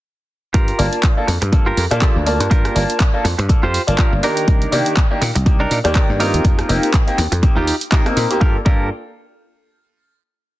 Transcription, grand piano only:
0.78 1.14 A#3 medium
0.78 1.14 D4 medium
0.78 1.14 F4 medium
0.78 1.14 A5 medium
1.17 1.26 A#3 medium
1.17 1.26 D4 medium
1.17 1.27 F4 medium
1.17 1.27 A4 medium
1.53 1.64 A#3 medium
1.53 1.64 D4 medium
1.53 1.65 F4 medium
1.53 1.65 A4 medium
1.91 2.24 A#3 medium
1.91 2.24 D4 medium
1.91 2.24 F4 medium
1.91 2.24 A5 loud
2.26 2.73 A#3 medium
2.26 2.73 D4 medium
2.26 2.73 F4 medium
2.26 2.73 A5 loud
2.75 3.11 A#3 medium
2.75 3.11 D4 medium
2.75 3.11 F4 medium
2.75 3.11 A5 medium
3.14 3.23 A#3 medium
3.14 3.23 D4 medium
3.14 3.23 F4 medium
3.14 3.23 A4 medium
3.49 3.61 A#3 medium
3.49 3.61 D4 medium
3.49 3.61 F4 medium
3.49 3.61 A4 medium
3.87 4.20 A#3 medium
3.87 4.21 D4 medium
3.87 4.21 F4 medium
3.87 4.21 A5 loud
4.23 4.70 D#3 medium
4.23 4.70 A#3 medium
4.23 4.70 G4 loud
4.23 4.70 D5 medium
4.72 5.07 D#3 medium
4.72 5.07 A#3 medium
4.72 5.08 G4 loud
4.72 5.07 D5 medium
5.10 5.20 A#3 medium
5.10 5.20 D4 medium
5.10 5.20 D#4 medium
5.10 5.20 G4 medium
5.46 5.58 A#3 medium
5.46 5.58 D4 medium
5.46 5.58 D#4 medium
5.46 5.58 G4 loud
5.84 6.17 D#3 medium
5.84 6.17 A#3 medium
5.84 6.17 G4 loud
5.84 6.17 D5 medium
6.20 6.66 A#3 medium
6.20 6.67 C4 medium
6.20 6.67 D#4 medium
6.20 6.67 G4 loud
6.69 7.04 A#3 medium
6.69 7.04 C4 medium
6.69 7.04 D#4 medium
6.69 7.04 G4 medium
7.07 7.16 A#3 medium
7.07 7.17 C4 medium
7.07 7.17 D#4 medium
7.07 7.17 G4 loud
7.43 7.55 A#3 medium
7.43 7.55 C4 medium
7.43 7.55 D#4 medium
7.43 7.55 G4 loud
7.92 8.03 A#3 medium
7.92 8.03 C4 medium
7.92 8.03 D#4 medium
7.92 8.03 G4 loud
8.06 8.27 A#3 medium
8.06 8.27 C4 medium
8.06 8.27 D#4 medium
8.06 8.27 A#4 loud
8.30 8.39 A#3 medium
8.30 8.40 C4 medium
8.30 8.40 D#4 medium
8.30 8.40 G4 loud
8.40 8.56 A#3 medium
8.40 8.56 D4 medium
8.65 8.84 A#3 medium
8.65 8.85 D4 medium
8.65 8.85 F4 medium
8.65 8.85 A4 medium

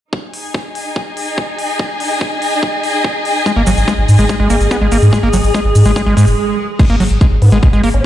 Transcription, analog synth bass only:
3.56 3.64 G#1 medium
3.67 3.74 G#1 loud
3.77 3.84 G#1 medium
3.98 4.05 G#1 medium
4.09 4.16 G#2 medium
4.19 4.26 G#1 medium
4.40 4.47 G#1 medium
4.50 4.57 G#1 loud
4.61 4.68 G#1 medium
4.81 4.89 G#1 medium
4.92 4.99 G#1 medium
5.02 5.09 G#2 medium
5.23 5.30 G#1 medium
5.34 5.41 G#1 loud
5.44 5.51 G#1 medium
5.65 5.72 G#1 medium
5.75 5.82 G#2 medium
5.86 5.93 G#1 medium
6.06 6.14 G#1 medium
6.17 6.24 G#2 loud
6.27 6.34 F#1 medium
6.90 6.97 G#1 medium
7.00 7.07 G#1 loud
7.11 7.18 G#1 medium
7.31 7.39 G#1 medium
7.42 7.49 G#2 loud
7.52 7.59 G#1 medium
7.73 7.80 G#1 medium
7.84 7.91 G#1 loud
7.94 8.01 G#1 medium

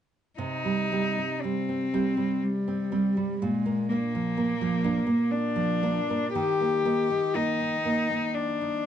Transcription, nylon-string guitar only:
0.38 3.38 C3 soft
0.65 0.91 G3 soft
0.92 1.16 G3 soft
0.92 1.16 C4 soft
1.18 1.59 C4 soft
1.44 1.85 G3 soft
1.69 1.93 C4 soft
1.94 2.16 G3 soft
1.94 2.17 C4 soft
2.17 2.91 G3 soft
2.68 2.91 C4 soft
2.92 3.15 G3 soft
2.92 3.15 C4 soft
3.17 3.42 G3 soft
3.42 6.32 A#2 soft
3.66 3.89 A#3 soft
3.90 4.12 A#3 soft
3.90 4.13 D4 soft
4.15 4.53 F3 soft
4.37 4.75 A#3 soft
4.61 4.99 F3 soft
4.84 5.05 A#3 soft
4.84 5.06 D4 soft
5.07 5.81 A#3 soft
5.56 5.99 F3 soft
5.83 6.07 A#3 soft
5.83 6.07 D4 soft
6.10 6.36 A#3 soft
6.35 8.86 D#3 soft
6.60 6.84 A#3 soft
6.85 7.08 A#3 soft
6.85 7.09 D#4 soft
7.10 7.50 D#4 soft
7.35 7.75 A#3 soft
7.60 7.84 D#4 soft
7.85 8.08 A#3 soft
7.85 8.08 D#4 soft
8.10 8.86 A#3 soft
8.61 8.86 D#4 soft

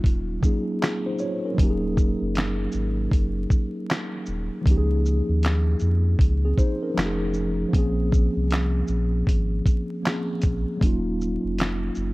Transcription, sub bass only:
0.04 0.38 D#1 medium
1.59 2.14 D#1 loud
2.22 2.68 F#1 medium
2.74 3.08 G#1 medium
3.12 3.46 F#1 medium
4.28 4.50 D#1 medium
4.66 5.22 C#2 loud
5.29 5.75 D#2 medium
5.82 6.15 F2 medium
6.19 6.53 C#2 loud
6.97 7.65 F1 loud
7.74 8.29 A#1 medium
8.37 8.83 C2 medium
8.89 9.23 A#1 loud
9.27 9.61 G#1 loud
10.44 10.65 A#1 medium
10.81 11.37 D#1 loud
11.44 11.90 F1 medium
11.97 12.13 F#1 medium

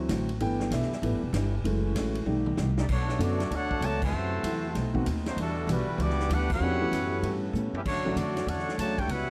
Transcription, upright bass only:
0.09 0.39 A1 loud
0.40 0.70 G1 loud
0.70 0.89 B1 loud
0.90 muted upright bass stroke soft
1.02 1.11 A1 medium
1.11 1.22 G1 medium
1.23 1.32 E1 medium
1.33 1.63 G1 loud
1.64 1.94 F#1 loud
1.95 2.25 A1 loud
2.26 2.56 B1 loud
2.57 2.88 C2 loud
2.89 3.18 B1 loud
3.19 3.49 F#2 loud
3.50 3.80 D2 medium
3.81 4.11 C#2 loud
4.12 4.43 F#2 medium
4.43 4.74 E2 loud
4.75 5.05 B1 medium
5.06 5.36 D#2 loud
5.36 5.67 E2 medium
5.67 5.86 B1 loud
5.88 muted upright bass stroke soft
5.98 6.29 C#2 loud
6.30 6.59 D2 loud
6.60 6.91 E2 loud
6.91 7.22 F#2 loud
7.22 7.53 G2 medium
7.53 7.72 A2 loud
7.73 muted upright bass stroke soft
7.85 7.96 D2 medium
7.95 8.05 C#2 medium
8.06 8.15 A1 medium
8.16 8.46 F2 loud
8.47 8.77 E2 medium
8.78 9.07 D2 loud
9.08 9.27 C#2 medium

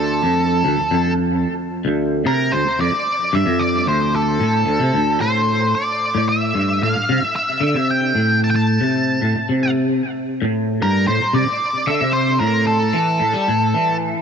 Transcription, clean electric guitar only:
0.00 0.22 D2 loud
0.23 0.63 F2 medium
0.65 0.77 D2 medium
0.78 0.91 D2 medium
0.91 1.44 F2 loud
1.85 2.24 D2 medium
2.25 2.51 C3 medium
2.53 2.65 D2 loud
2.66 2.78 D2 medium
2.79 2.91 F2 medium
2.92 muted clean electric guitar stroke medium
3.33 3.45 G2 loud
3.46 3.85 F2 medium
3.86 4.39 D2 medium
4.40 4.65 A2 medium
4.66 4.79 D2 medium
4.80 4.92 C3 medium
4.94 5.19 D2 loud
5.20 5.73 A2 medium
6.15 6.53 A2 medium
6.54 6.80 G2 medium
6.82 6.93 A2 medium
6.96 7.08 A2 medium
7.09 7.20 C3 medium
7.22 muted clean electric guitar stroke medium
7.60 7.73 D3 loud
7.74 8.13 C3 medium
8.15 8.80 A2 medium
8.81 9.20 C3 medium
9.22 9.33 A2 medium
9.36 9.48 A2 medium
9.49 10.00 C3 medium
10.42 10.80 A2 loud
10.82 11.07 G2 loud
11.08 11.20 A2 loud
11.21 11.33 A2 medium
11.33 11.46 C3 loud
11.47 muted clean electric guitar stroke medium
11.87 12.00 D3 medium
12.01 12.40 C3 medium
12.40 12.93 A2 medium
12.93 13.19 E3 loud
13.20 13.32 A2 medium
13.33 13.46 G3 medium
13.48 13.73 A2 loud
13.74 14.22 E3 medium

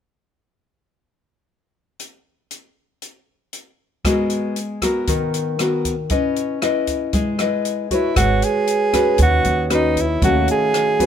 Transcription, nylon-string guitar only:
4.05 5.06 G#3 medium
4.05 4.56 B3 soft
4.05 4.57 F#4 soft
4.05 4.57 A#4 medium
4.83 5.56 B3 medium
4.83 5.56 F#4 medium
4.83 5.56 A#4 medium
5.08 6.08 D#3 medium
5.60 5.94 B3 soft
5.60 5.95 F#4 soft
5.60 5.95 A#4 medium
6.11 7.11 C#4 medium
6.11 6.58 E4 soft
6.11 6.58 B4 soft
6.11 6.58 D#5 medium
6.62 7.35 E4 medium
6.62 7.36 B4 medium
6.62 7.36 D#5 medium
7.14 8.14 G#3 medium
7.40 7.87 E4 medium
7.40 7.87 B4 medium
7.40 7.87 D#5 medium
7.91 8.66 F#4 medium
7.91 8.66 B4 medium
7.91 8.66 C#5 medium
8.16 9.16 G#3 medium
8.93 9.66 C#4 medium
8.93 9.66 F#4 medium
8.93 9.67 B4 medium
9.20 10.20 D#3 medium
9.70 10.04 C#4 medium
9.70 10.04 F#4 medium
9.70 10.04 B4 medium
10.23 11.06 D#3 medium
10.23 10.95 A3 medium
10.23 10.96 C#4 medium
10.23 10.96 F#4 medium
10.99 11.06 C4 medium
10.99 11.06 F#4 medium
10.99 11.06 B4 medium

